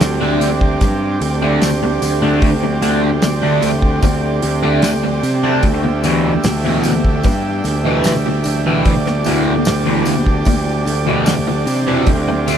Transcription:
Already playing: transistor combo organ C4 G4 D5
0.01 picked electric bass D2, muted distorted electric guitar stroke, snare, open hi-hat, tambourine
0.20 distorted electric guitar D3 A3 D4
0.40 picked electric bass D2, open hi-hat, tambourine
0.61 kick
0.81 picked electric bass G2, muted distorted electric guitar stroke, kick, open hi-hat, tambourine
1.21 picked electric bass D2, open hi-hat, tambourine
1.42 distorted electric guitar D3 A3 D4
1.62 picked electric bass D2, snare, open hi-hat, tambourine
1.83 muted distorted electric guitar stroke
2.02 picked electric bass D2, open hi-hat, tambourine
2.22 distorted electric guitar D3 A3 D4
2.42 picked electric bass D2, kick, open hi-hat
2.63 muted distorted electric guitar stroke
2.82 picked electric bass D2, distorted electric guitar D3 A3 D4, open hi-hat, tambourine
3.22 picked electric bass D2, muted distorted electric guitar stroke, snare, open hi-hat, tambourine
3.42 distorted electric guitar D3 A3 D4
3.62 picked electric bass D2, open hi-hat, tambourine
3.82 kick
4.03 picked electric bass D2, muted distorted electric guitar stroke, kick, open hi-hat, tambourine
4.42 picked electric bass D2, open hi-hat, tambourine
4.63 distorted electric guitar D3 A3 D4
4.82 picked electric bass D2, snare, open hi-hat, tambourine
5.04 muted distorted electric guitar stroke
5.23 picked electric bass C3, open hi-hat, tambourine
5.43 distorted electric guitar D3 A3 D4
5.63 picked electric bass D2, transistor combo organ D4 E5, kick, open hi-hat
5.83 muted distorted electric guitar stroke
6.04 distorted electric guitar E2 B2 E3, open hi-hat, tambourine
6.44 picked electric bass D2, muted distorted electric guitar stroke, snare, open hi-hat, tambourine
6.64 distorted electric guitar E2 B2 E3
6.84 picked electric bass D2, open hi-hat, tambourine
7.05 kick
7.23 picked electric bass G2, muted distorted electric guitar stroke, kick, open hi-hat, tambourine
7.64 picked electric bass D2, snare, open hi-hat, tambourine
7.85 distorted electric guitar E2 B2 E3
8.04 picked electric bass D2, snare, open hi-hat, tambourine
8.26 muted distorted electric guitar stroke
8.44 picked electric bass D2, open hi-hat, tambourine
8.66 distorted electric guitar E2 B2 E3
8.85 picked electric bass D2, transistor combo organ D5, kick, open hi-hat, tambourine
9.07 muted distorted electric guitar stroke, snare
9.24 picked electric bass D2, distorted electric guitar E2 B2 E3, open hi-hat, tambourine
9.65 picked electric bass D2, muted distorted electric guitar stroke, snare, open hi-hat, tambourine
9.85 distorted electric guitar E2 B2 E3
10.05 picked electric bass D2, open hi-hat, tambourine
10.26 kick
10.45 picked electric bass D2, muted distorted electric guitar stroke, kick, open hi-hat, tambourine
10.86 picked electric bass D2, open hi-hat, tambourine
11.07 distorted electric guitar E2 B2 E3
11.26 picked electric bass D2, snare, open hi-hat, tambourine
11.47 muted distorted electric guitar stroke
11.66 picked electric bass C3, open hi-hat, tambourine
11.87 distorted electric guitar E2 B2 E3
12.07 picked electric bass D2, transistor combo organ C4, kick, open hi-hat
12.28 muted distorted electric guitar stroke
12.47 distorted electric guitar D3 A3 D4, open hi-hat, tambourine

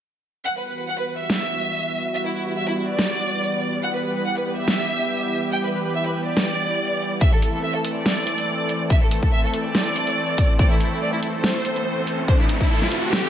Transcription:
0.45 supersaw synth E3 G3 B3 F#4, violin section F#5
0.56 violin section B4
0.66 violin section B4
0.78 violin section B4
0.87 violin section F#5
0.99 violin section B4
1.08 violin section B4
1.20 violin section E5
1.30 snare
2.14 violin section E5
2.25 violin section E4
2.35 violin section E4
2.47 violin section E4
2.56 violin section E5
2.68 violin section E4
2.78 violin section E4
2.89 violin section D5
2.99 snare
3.83 supersaw synth G4, violin section F#5
3.94 violin section B4
4.04 violin section B4
4.16 violin section B4
4.25 violin section F#5
4.37 violin section B4
4.47 violin section B4
4.58 violin section E5
4.68 snare
5.52 violin section G5
5.63 violin section B4
5.73 violin section B4
5.85 violin section B4
5.94 violin section E5
6.06 violin section B4
6.16 violin section B4
6.27 violin section D5
6.37 snare
7.21 supersaw synth A3 C4 A4, violin section E5, kick
7.33 violin section A4
7.42 violin section A4, closed hi-hat
7.54 violin section A4
7.63 violin section E5
7.75 violin section A4
7.85 violin section A4, closed hi-hat
7.96 violin section D5
8.06 snare
8.27 closed hi-hat
8.38 closed hi-hat
8.69 closed hi-hat
8.90 violin section E5, kick
9.02 violin section A4
9.11 violin section A4, closed hi-hat
9.23 violin section A4, kick
9.33 violin section E5
9.44 violin section A4
9.54 violin section A4, closed hi-hat
9.65 violin section D5
9.75 snare
9.96 closed hi-hat
10.07 closed hi-hat
10.38 kick, closed hi-hat
10.59 violin section D5, kick, riser
10.71 violin section E4
10.80 violin section E4, closed hi-hat
10.92 violin section E4
11.02 violin section D5
11.13 violin section E4
11.23 violin section E4, closed hi-hat
11.34 violin section C5
11.44 snare
11.65 closed hi-hat
11.76 closed hi-hat
12.07 closed hi-hat
12.28 violin section C5, kick
12.40 violin section E4
12.49 violin section E4, closed hi-hat
12.61 violin section E4, kick
12.71 violin section A4
12.82 violin section E4, snare
12.92 violin section E4, closed hi-hat
13.03 violin section G4
13.13 snare

